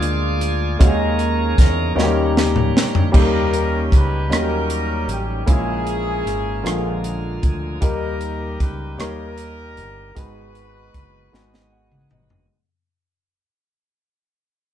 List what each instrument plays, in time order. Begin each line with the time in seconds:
Already playing: fingered electric bass D2, grand piano A#2 G#3 A#3 D4 F4 G#4, tonewheel organ F4 G#4 D5
0.02 closed hi-hat
0.41 closed hi-hat
0.79 fingered electric bass D#2, grand piano D#3 G#3 A#3 C#4 D#4 F#4, tonewheel organ G#3 A#3 C#4 A#4, kick, closed hi-hat
0.87 grand piano G#4
1.19 closed hi-hat
1.58 fingered electric bass E2, kick, snare, closed hi-hat
1.95 fingered electric bass D#2, grand piano D#3 G3 A#3 C#4 D#4 F#4, tonewheel organ G3 A#3 C#4, snare
2.03 grand piano G4
2.37 snare
2.56 mid tom
2.77 snare
2.95 floor tom
3.12 fingered electric bass D#2, grand piano D#3 G3 A#3 C#4 D#4 G4, tonewheel organ D#3 G3 C#4 G4, horn section G4, kick, crash
3.16 horn section C#4 A#4
3.54 closed hi-hat
3.92 fingered electric bass C#2, horn section B4, kick, cross-stick, closed hi-hat
4.29 fingered electric bass D#2, grand piano F#3 A#3 C#4 D#4 A#4, closed hi-hat
4.33 grand piano G3, horn section C#4 G4 A#4, cross-stick
4.70 closed hi-hat
5.08 fingered electric bass A1, horn section G4, closed hi-hat
5.46 fingered electric bass A#1, grand piano A#2 G#3 A#3 C#4 E4 G#4, tonewheel organ E3 A#3 C#4 G#4, kick, closed hi-hat
5.50 horn section C#4 E4 G#4
5.87 closed hi-hat
6.25 fingered electric bass G#1, cross-stick, closed hi-hat
6.63 fingered electric bass A#1, grand piano A#2 D3 F3 G#3 A#3 G#4, tonewheel organ D3 F3 A#3 G4, cross-stick, closed hi-hat
6.72 tonewheel organ G#4
7.04 tonewheel organ F5, closed hi-hat
7.42 fingered electric bass D2, tonewheel organ G#5, kick, closed hi-hat
7.81 fingered electric bass D#2, grand piano D#3 G3 A#3 D#4 G4 A#4, tonewheel organ D#3 G3 G4, horn section D#4 G4 A#4, kick, closed hi-hat
8.21 closed hi-hat
8.60 fingered electric bass C#2, horn section B4, kick, cross-stick, closed hi-hat
8.97 fingered electric bass D#2, grand piano G3 A#3 D#4 G4 C#5, horn section D#4 G4, cross-stick, closed hi-hat
9.02 horn section A#4
9.38 closed hi-hat
9.76 fingered electric bass G1, closed hi-hat
10.15 fingered electric bass G#1, grand piano G#2 G#3 B3 D#4 F#4 G#4, tonewheel organ D#3 G#3 B3 F#4, horn section D#4 F#4 B4, kick, closed hi-hat
10.55 closed hi-hat
10.94 fingered electric bass F#1, kick, cross-stick, closed hi-hat
11.32 fingered electric bass G#1, grand piano G#3 B3 D#4 F#4 G#4, snare
11.54 snare
11.72 grand piano F#5
11.92 mid tom
12.11 fingered electric bass G1, grand piano D#5, mid tom
12.30 floor tom